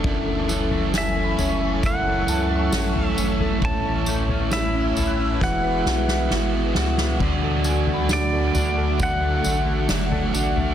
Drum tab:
CC |----------------|----------------|x---------------|
TB |--x-x-x-x-x-x-x-|--x-x-x---------|--x-x-x-x-x-x-x-|
SD |----o-------o---|----o---o-ooo-oo|----o-------o---|
FT |o--o--o-o----o-o|o--o--o---------|o--o--o-o----o-o|
BD |o-------o-------|o-------o-------|o-------o-------|